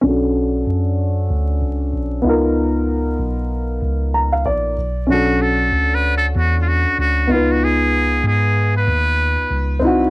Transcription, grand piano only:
0, 0, Header, 1, 2, 480
1, 0, Start_track
1, 0, Tempo, 631579
1, 29, Time_signature, 4, 2, 24, 8
1, 7676, End_track
2, 0, Start_track
2, 0, Title_t, "Grand piano"
2, 0, Program_c, 0, 0
2, 10, Note_on_c, 0, 61, 62
2, 28, Note_on_c, 0, 62, 59
2, 45, Note_on_c, 0, 66, 56
2, 64, Note_on_c, 0, 69, 71
2, 1669, Note_off_c, 0, 61, 0
2, 1678, Note_off_c, 0, 62, 0
2, 1686, Note_on_c, 0, 59, 65
2, 1687, Note_off_c, 0, 66, 0
2, 1696, Note_off_c, 0, 69, 0
2, 1704, Note_on_c, 0, 63, 65
2, 1720, Note_on_c, 0, 65, 60
2, 1741, Note_on_c, 0, 70, 74
2, 3148, Note_on_c, 0, 82, 60
2, 3281, Note_off_c, 0, 82, 0
2, 3286, Note_on_c, 0, 77, 65
2, 3379, Note_off_c, 0, 77, 0
2, 3386, Note_on_c, 0, 74, 63
2, 3587, Note_off_c, 0, 59, 0
2, 3596, Note_off_c, 0, 63, 0
2, 3604, Note_off_c, 0, 65, 0
2, 3615, Note_off_c, 0, 70, 0
2, 3837, Note_off_c, 0, 74, 0
2, 3851, Note_on_c, 0, 61, 55
2, 3866, Note_on_c, 0, 62, 52
2, 3882, Note_on_c, 0, 66, 52
2, 3903, Note_on_c, 0, 69, 58
2, 5509, Note_off_c, 0, 61, 0
2, 5517, Note_off_c, 0, 62, 0
2, 5525, Note_off_c, 0, 66, 0
2, 5528, Note_on_c, 0, 59, 60
2, 5536, Note_off_c, 0, 69, 0
2, 5542, Note_on_c, 0, 63, 54
2, 5560, Note_on_c, 0, 65, 56
2, 5579, Note_on_c, 0, 71, 59
2, 7428, Note_off_c, 0, 59, 0
2, 7435, Note_off_c, 0, 63, 0
2, 7444, Note_off_c, 0, 65, 0
2, 7444, Note_on_c, 0, 60, 74
2, 7454, Note_off_c, 0, 71, 0
2, 7463, Note_on_c, 0, 63, 65
2, 7481, Note_on_c, 0, 64, 70
2, 7499, Note_on_c, 0, 66, 79
2, 7676, Note_off_c, 0, 60, 0
2, 7676, Note_off_c, 0, 63, 0
2, 7676, Note_off_c, 0, 64, 0
2, 7676, Note_off_c, 0, 66, 0
2, 7676, End_track
0, 0, End_of_file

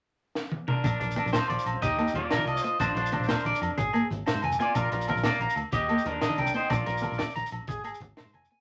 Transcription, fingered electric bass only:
0, 0, Header, 1, 2, 480
1, 0, Start_track
1, 0, Tempo, 325733
1, 1251, Time_signature, 12, 3, 24, 8
1, 12682, End_track
2, 0, Start_track
2, 0, Title_t, "Fingered electric bass"
2, 0, Program_c, 0, 33
2, 1246, Note_on_c, 0, 34, 81
2, 1431, Note_off_c, 0, 34, 0
2, 1493, Note_on_c, 0, 34, 75
2, 1767, Note_off_c, 0, 34, 0
2, 1854, Note_on_c, 0, 34, 94
2, 1944, Note_off_c, 0, 34, 0
2, 1968, Note_on_c, 0, 46, 80
2, 2061, Note_off_c, 0, 46, 0
2, 2211, Note_on_c, 0, 34, 64
2, 2303, Note_off_c, 0, 34, 0
2, 2442, Note_on_c, 0, 34, 76
2, 2537, Note_off_c, 0, 34, 0
2, 2691, Note_on_c, 0, 39, 85
2, 3056, Note_off_c, 0, 39, 0
2, 3148, Note_on_c, 0, 39, 89
2, 3339, Note_off_c, 0, 39, 0
2, 3510, Note_on_c, 0, 51, 81
2, 3605, Note_off_c, 0, 51, 0
2, 3614, Note_on_c, 0, 36, 84
2, 3811, Note_off_c, 0, 36, 0
2, 4121, Note_on_c, 0, 34, 77
2, 4307, Note_off_c, 0, 34, 0
2, 4344, Note_on_c, 0, 34, 89
2, 4628, Note_off_c, 0, 34, 0
2, 4708, Note_on_c, 0, 34, 88
2, 4808, Note_off_c, 0, 34, 0
2, 4840, Note_on_c, 0, 46, 82
2, 4935, Note_off_c, 0, 46, 0
2, 5090, Note_on_c, 0, 34, 73
2, 5181, Note_off_c, 0, 34, 0
2, 5326, Note_on_c, 0, 41, 76
2, 5419, Note_off_c, 0, 41, 0
2, 5573, Note_on_c, 0, 32, 85
2, 5936, Note_off_c, 0, 32, 0
2, 6049, Note_on_c, 0, 32, 92
2, 6231, Note_off_c, 0, 32, 0
2, 6401, Note_on_c, 0, 44, 85
2, 6495, Note_off_c, 0, 44, 0
2, 6533, Note_on_c, 0, 29, 79
2, 6713, Note_off_c, 0, 29, 0
2, 7009, Note_on_c, 0, 34, 86
2, 7191, Note_off_c, 0, 34, 0
2, 7248, Note_on_c, 0, 34, 81
2, 7521, Note_off_c, 0, 34, 0
2, 7596, Note_on_c, 0, 34, 91
2, 7692, Note_off_c, 0, 34, 0
2, 7710, Note_on_c, 0, 46, 80
2, 7808, Note_off_c, 0, 46, 0
2, 7946, Note_on_c, 0, 34, 67
2, 8045, Note_off_c, 0, 34, 0
2, 8193, Note_on_c, 0, 38, 78
2, 8289, Note_off_c, 0, 38, 0
2, 8434, Note_on_c, 0, 39, 82
2, 8804, Note_off_c, 0, 39, 0
2, 8923, Note_on_c, 0, 39, 88
2, 9107, Note_off_c, 0, 39, 0
2, 9276, Note_on_c, 0, 51, 83
2, 9371, Note_off_c, 0, 51, 0
2, 9394, Note_on_c, 0, 36, 79
2, 9581, Note_off_c, 0, 36, 0
2, 9881, Note_on_c, 0, 34, 80
2, 10066, Note_off_c, 0, 34, 0
2, 10121, Note_on_c, 0, 34, 81
2, 10397, Note_off_c, 0, 34, 0
2, 10485, Note_on_c, 0, 34, 91
2, 10577, Note_off_c, 0, 34, 0
2, 10606, Note_on_c, 0, 46, 84
2, 10697, Note_off_c, 0, 46, 0
2, 10842, Note_on_c, 0, 34, 71
2, 10936, Note_off_c, 0, 34, 0
2, 11082, Note_on_c, 0, 34, 82
2, 11176, Note_off_c, 0, 34, 0
2, 11316, Note_on_c, 0, 32, 87
2, 11686, Note_off_c, 0, 32, 0
2, 11789, Note_on_c, 0, 32, 88
2, 11979, Note_off_c, 0, 32, 0
2, 12160, Note_on_c, 0, 44, 78
2, 12255, Note_off_c, 0, 44, 0
2, 12284, Note_on_c, 0, 29, 88
2, 12469, Note_off_c, 0, 29, 0
2, 12682, End_track
0, 0, End_of_file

